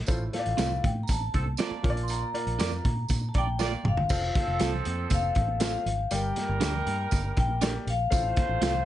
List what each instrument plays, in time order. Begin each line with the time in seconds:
0.06 fingered electric bass A1, grand piano A2 F4 A4 C5, kick, closed hi-hat, tambourine
0.33 grand piano F4 A4 C5, vibraphone F5, snare, closed hi-hat, high conga
0.39 grand piano D5
0.46 fingered electric bass A1, closed hi-hat, high conga
0.57 fingered electric bass C2, clean electric guitar C4 F4 A4, snare, closed hi-hat, tambourine
0.72 low conga
0.84 fingered electric bass A2, vibraphone G5, kick, closed hi-hat, muted conga, high conga, low conga
1.03 vibraphone A#5
1.07 fingered electric bass A1, vibraphone A5, kick, closed hi-hat, tambourine, high conga
1.34 fingered electric bass C2, horn section F3 C4 A4, kick, closed hi-hat
1.46 high conga
1.57 horn section A#3 F4 D5, clean electric guitar C4 F4 A4, snare, closed hi-hat, tambourine, muted conga
1.71 muted fingered electric bass stroke, high conga
1.83 fingered electric bass A#1, grand piano A#2 F4 A#4 C#5, kick, closed hi-hat, muted conga, low conga
1.90 grand piano D5
1.97 closed hi-hat
2.03 vibraphone C6
2.08 vibraphone A#5, closed hi-hat, tambourine
2.34 grand piano F4 A#4 D5, closed hi-hat, high conga
2.46 fingered electric bass A#1, closed hi-hat, high conga
2.59 fingered electric bass F2, clean electric guitar F4 A#4 D5, snare, closed hi-hat, tambourine, muted conga
2.71 low conga
2.84 fingered electric bass A#2, kick, closed hi-hat, high conga
3.08 fingered electric bass A#2, kick, closed hi-hat, tambourine, high conga
3.29 vibraphone A5
3.34 fingered electric bass A#1, horn section A#3 F4 D5, kick, closed hi-hat, muted conga
3.38 vibraphone G5
3.47 high conga
3.59 horn section A#3 F4 D5, clean electric guitar F4 A#4 D5, snare, tambourine
3.72 high conga
3.84 fingered electric bass F#1, mid tom, low conga
3.88 vibraphone F5
3.97 floor tom
4.09 fingered electric bass F1, horn section F3 C4 A4, grand piano F4 A4 C5 F5, kick, crash, tambourine, muted conga
4.13 vibraphone F5
4.35 kick, snare, closed hi-hat, muted conga, high conga
4.48 fingered electric bass F1
4.59 fingered electric bass C2, clean electric guitar C4 F4 A4, snare, closed hi-hat, tambourine
4.64 vibraphone A5
4.74 low conga
4.85 fingered electric bass F2, closed hi-hat, muted conga, high conga
5.10 fingered electric bass F1, kick, closed hi-hat, tambourine, muted conga, high conga
5.14 vibraphone F5
5.35 fingered electric bass A1, kick, closed hi-hat
5.48 high conga
5.60 clean electric guitar C4 F4 A4, grand piano F4 A4 C5 F5, vibraphone F5, snare, closed hi-hat, tambourine
5.73 high conga
5.86 fingered electric bass G#1, closed hi-hat, low conga
6.11 fingered electric bass G1, grand piano G2 G4 A#4 D5 G5, horn section G3 D4 A#4, vibraphone G5, closed hi-hat, tambourine, muted conga
6.36 snare, closed hi-hat, muted conga, high conga
6.49 fingered electric bass G1
6.60 fingered electric bass D2, clean electric guitar D4 G4 A#4, snare, closed hi-hat, tambourine
6.65 vibraphone G5
6.76 low conga
6.86 fingered electric bass G2, closed hi-hat, muted conga, high conga
7.11 fingered electric bass G1, kick, closed hi-hat, tambourine, muted conga, high conga
7.37 fingered electric bass A#1, vibraphone G5, kick, closed hi-hat
7.50 high conga
7.61 clean electric guitar D4 G4 A#4, grand piano G4 A#4 D5 G5, snare, closed hi-hat, tambourine
7.75 high conga
7.87 fingered electric bass A#1, vibraphone F5, closed hi-hat, low conga
8.10 fingered electric bass A1, grand piano A2 F4 A4 C5 F5, horn section A3 F4 C5, kick, closed hi-hat, tambourine, muted conga
8.36 kick, snare, closed hi-hat, high conga
8.49 fingered electric bass A1
8.62 fingered electric bass C2, clean electric guitar C4 F4 A4, vibraphone F5, snare, closed hi-hat, tambourine
8.75 low conga